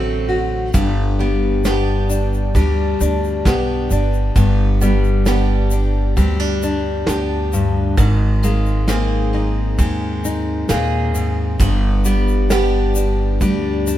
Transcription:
Already playing: A1 D3 F#3 A3 C4 F#4
0.28 F#4, ride
0.74 G1 G2 B3, kick, ride, shaker
1.19 G3 B3, ride
1.64 B3 D4 G4, snare, ride, shaker
2.10 D4, ride, shaker
2.33 shaker
2.55 D2 G3 D4, kick, ride, shaker
3.00 D2 D4, ride, shaker
3.24 shaker
3.45 B1 B3 D4 G4, kick, snare, ride, shaker
3.91 G1 D4, ride, shaker
4.13 shaker
4.36 G1 G2 B3, kick, ride, shaker
4.81 G3 B3, ride, shaker
5.04 shaker
5.26 B3 D4 G4, snare, ride, shaker
5.71 D4, ride, shaker
6.17 D2 G3 C4, kick, ride, shaker
6.40 D4
6.62 D4, ride, shaker
7.07 D2 B3 D4 G4, snare, ride, shaker
7.52 G2, ride, shaker
7.97 G#1 G#2 D#3, kick, ride, shaker
8.43 G#3 A#3, ride, shaker
8.66 shaker
8.88 A#3 C4 G#4, snare, ride, shaker
9.33 D#4, ride
9.79 D#2 G#3 C4, kick, ride, shaker
10.24 D#4, ride, shaker
10.69 D#2 A#2 A#3 C4 G#4, snare, ride, shaker
11.14 G#2, ride, shaker
11.59 G1 G2 B3, kick, ride, shaker
12.05 G3 B3, ride, shaker
12.28 shaker
12.50 B3 D4 G4, snare, ride, shaker
12.95 D4, ride, shaker
13.41 D2 G3 D4, kick, ride, shaker
13.87 D4, ride, shaker

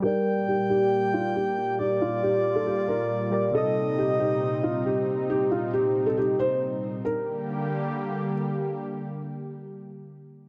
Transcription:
0.00 A#2 G3 A#3 G4 A#4 G5
0.05 A#4 D5
0.48 G4
0.70 G4
1.13 F4
1.36 G4
1.79 F4 G4 D5
2.01 F4
2.23 G4
2.55 A4
2.66 G4
2.88 A#4
3.30 G3 G4 A#4 D5
3.51 C3 C4 D#4 A4 D#5
3.55 D#4 D#5
3.98 G4
4.20 G4
4.63 F4
4.86 G4
5.30 G4
5.51 F4
5.73 G4
6.06 A4
6.17 G4
6.39 C5
7.05 D3 G3 A#3 G4 A#4

